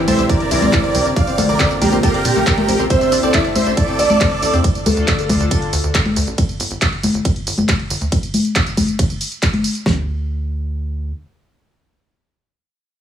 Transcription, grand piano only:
Already playing: E3 E4
0.51 E3 E4
1.38 D3 D4
2.90 C4 C5
3.34 E4 E5
3.99 D4 D5
4.86 A3 A4

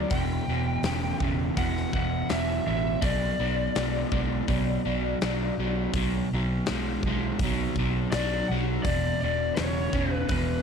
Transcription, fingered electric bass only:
0.11 E1
0.48 E1
0.83 E1
1.21 E1
1.57 E1
1.93 E1
2.30 E1
2.67 A1
3.03 B1
3.39 B1
3.75 B1
4.12 B1
4.49 B1
4.85 B1
5.22 B1
5.58 B1
5.93 B1
6.31 B1
6.69 B1
7.03 B1
7.40 B1
7.76 B1
8.12 B1
8.49 B1
8.85 E1
9.22 E1
9.58 E1
9.94 E1
10.29 E1

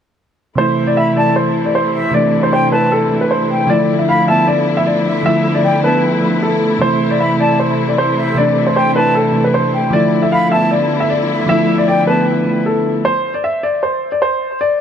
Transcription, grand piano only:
0.58 C5
0.87 D5
0.97 E5
1.17 D5
1.36 C5
1.65 D5
1.75 C5
2.14 D5
2.43 C5
2.53 C5
2.72 B4
2.92 A4
3.21 B4
3.31 C5
3.70 D5
3.99 E5
4.09 F5
4.28 E5
4.48 D5
4.77 E5
4.87 D5
5.26 E5
5.55 D5
5.65 D5
5.84 B4
6.42 A4
6.81 C5
7.11 D5
7.20 E5
7.40 D5
7.59 C5
7.89 D5
7.98 C5
8.37 D5
8.67 C5
8.76 C5
8.96 B4
9.15 A4
9.44 B4
9.54 C5
9.93 D5
10.22 E5
10.32 F5
10.52 E5
10.71 D5
11.00 E5
11.10 D5
11.49 E5
11.78 D5
11.88 D5
12.07 B4
12.66 A4
13.05 C5
13.34 D5
13.44 E5
13.63 D5
13.83 C5
14.12 D5
14.22 C5
14.61 D5

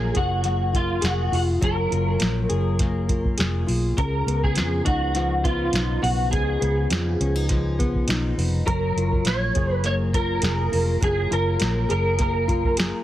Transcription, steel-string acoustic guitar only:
Already playing: F#3 A#3 F4
0.14 G#4
0.45 A#3
0.72 F4
1.01 G#4
1.32 F4
1.61 F#3
1.91 F4
2.19 A#3
2.49 G#4
2.80 A#3
3.09 F4
3.38 G#4
3.67 F4
3.97 C#3
4.27 B3
4.56 F3
4.85 D#4
5.15 F3
5.44 B3
5.73 D#4
6.02 B3
6.33 C#3
6.61 B3
6.91 F3
7.20 C#4
7.36 D#4
7.49 F3
7.79 B3
8.09 D#4
8.38 B3
8.66 F#3
8.98 F4
9.26 A#3
9.55 G#4
9.84 A#3
10.14 F4
10.43 G#4
10.72 F4
11.01 F#3
11.31 F4
11.60 A#3
11.89 G#4
12.19 A#3
12.48 F4
12.77 G#4

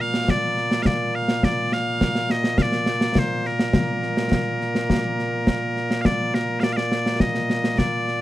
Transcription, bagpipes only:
Already playing: A#2 A#3
0.01 F5
0.30 D5
0.82 D5 F5
1.15 F5
1.44 D5
1.73 F5
2.31 D#5
2.58 F5
2.62 D5
3.19 C5
3.47 A#4
6.01 F5
6.05 D5
6.35 A#4
6.60 D5 F5
6.73 D5 F5
7.20 D#5
7.78 D5

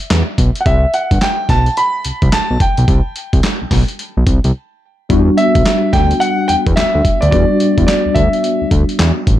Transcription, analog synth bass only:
0.11 E2
0.38 B1
0.66 C2
1.11 G1
1.49 B1
2.05 C2
2.22 C2
2.33 B1
2.50 B1
2.78 B1
2.88 C2
3.33 C2
3.62 B1
3.71 B1
4.17 B1
4.27 C2
4.44 C2
5.10 E2
5.55 B1
5.93 D2
6.49 E2
6.67 E2
6.77 D2
6.95 D2
7.22 D2
7.33 E2
7.78 E2
8.06 D2
8.16 D2
8.62 D2
8.72 D2
9.00 E2
9.27 A1

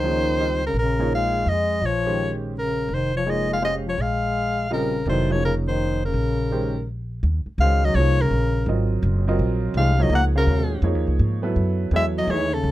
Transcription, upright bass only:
Already playing: C#2
0.74 A#1
1.46 F2
1.82 A#1
2.89 F1
3.98 A#1
5.06 F1
6.14 A#1
7.23 D#2
7.46 muted upright bass stroke
7.58 C#2
7.95 C2
8.31 A#1
8.66 G#1
9.03 F#1
9.39 A#1
9.74 C2
10.10 C#2
10.47 D#2
10.82 F2
10.95 D#2
11.07 C#2
11.19 G#2
11.56 F#2
11.91 E2
12.27 D#2
12.64 C#2

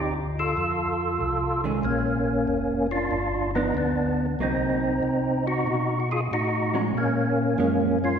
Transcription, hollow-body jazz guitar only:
1.64 D#3 G#3 C#4
3.56 F3 B3 D4
4.40 F#3 A#3 D#4
6.74 F3 G#3 C#4
7.59 F3 G#3 C#4

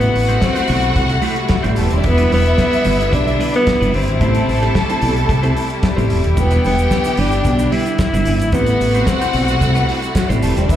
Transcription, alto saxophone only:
Already playing: B3
0.43 C4
1.54 G3
2.07 B3
2.34 B3
3.14 D4
3.56 B3
3.95 C4
5.86 G3
6.40 B3
6.66 B3
7.19 D4
7.72 E4
8.54 B3
9.07 C4
10.18 G3
10.72 B3

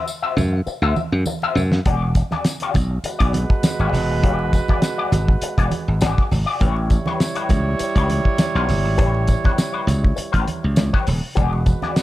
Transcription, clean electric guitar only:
0.06 muted clean electric guitar stroke
0.22 F#4 C5 E5
0.37 muted clean electric guitar stroke
0.53 muted clean electric guitar stroke
0.66 muted clean electric guitar stroke
0.83 F#4 C5 E5
0.97 muted clean electric guitar stroke
1.12 muted clean electric guitar stroke
1.27 muted clean electric guitar stroke
1.43 F#4 C5 E5
1.57 muted clean electric guitar stroke
1.73 muted clean electric guitar stroke
1.86 F#4 G#4 D5
2.03 muted clean electric guitar stroke
2.17 muted clean electric guitar stroke
2.32 F#4 G#4 D5
2.46 muted clean electric guitar stroke
2.62 F#4 G#4 D5
2.75 muted clean electric guitar stroke
2.91 muted clean electric guitar stroke
3.05 muted clean electric guitar stroke
3.19 F#4 G#4 D5
3.34 muted clean electric guitar stroke
3.50 muted clean electric guitar stroke
3.64 muted clean electric guitar stroke
3.80 F#4 G#4 D5
3.93 muted clean electric guitar stroke
4.11 muted clean electric guitar stroke
4.24 F#4 G#4 D5
4.40 muted clean electric guitar stroke
4.54 muted clean electric guitar stroke
4.69 F#4 G#4 D5
4.82 muted clean electric guitar stroke
4.98 F#4 G#4 D5
5.13 muted clean electric guitar stroke
5.28 muted clean electric guitar stroke
5.43 muted clean electric guitar stroke
5.58 F#4 G#4 D5
5.73 muted clean electric guitar stroke
5.88 muted clean electric guitar stroke
6.02 F#4 G#4 D5
6.32 muted clean electric guitar stroke
6.46 F#4 G#4 D5
6.61 G4 B4 C#5
6.77 muted clean electric guitar stroke
6.91 muted clean electric guitar stroke
7.07 G4 B4 C#5
7.20 muted clean electric guitar stroke
7.35 G4 B4 C#5
7.50 muted clean electric guitar stroke
7.67 muted clean electric guitar stroke
7.79 muted clean electric guitar stroke
7.97 G4 B4 C#5
8.10 muted clean electric guitar stroke
8.25 muted clean electric guitar stroke
8.40 muted clean electric guitar stroke
8.55 G4 B4 C#5
8.68 muted clean electric guitar stroke
8.84 muted clean electric guitar stroke
8.98 G4 B4 C#5
9.13 muted clean electric guitar stroke
9.28 muted clean electric guitar stroke
9.44 G4 B4 C#5
9.58 muted clean electric guitar stroke
9.73 G4 B4 C#5
9.87 muted clean electric guitar stroke
10.04 muted clean electric guitar stroke
10.16 muted clean electric guitar stroke
10.32 G4 B4 C#5
10.46 muted clean electric guitar stroke
10.63 muted clean electric guitar stroke
10.77 muted clean electric guitar stroke
10.93 G4 B4 C#5
11.05 muted clean electric guitar stroke
11.22 muted clean electric guitar stroke
11.35 F#4 G#4 D5
11.53 muted clean electric guitar stroke
11.66 muted clean electric guitar stroke
11.82 F#4 G#4 D5
11.97 muted clean electric guitar stroke

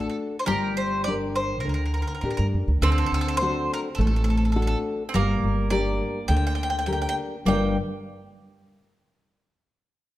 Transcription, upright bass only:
0.48 G1
1.64 D2
2.23 A2
2.39 G2
2.54 F#2
2.68 D2
2.81 D2
3.12 D2
3.98 A1
5.14 G1
5.44 G1
6.29 D2
7.45 G1

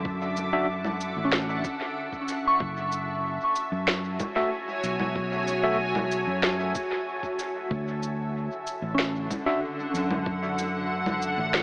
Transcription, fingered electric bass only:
Already playing: F#2
1.17 A1
2.61 F#1
3.72 F#2
4.84 B1
6.27 F#2
7.71 D2
8.82 A1
9.94 F#2
11.38 A1

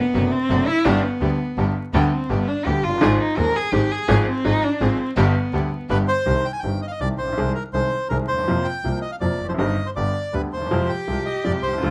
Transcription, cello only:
Already playing: B3
0.32 C4
0.67 E4
0.84 D4
1.03 B3
2.12 C4
2.30 B3
2.48 D4
2.65 G4
2.84 F4
3.19 D#4
3.38 A#4
3.56 G#4
3.73 G4
3.91 G#4
4.28 C4
4.45 D#4
4.63 D4
4.82 C4
5.18 B3
10.71 G4
11.82 F4

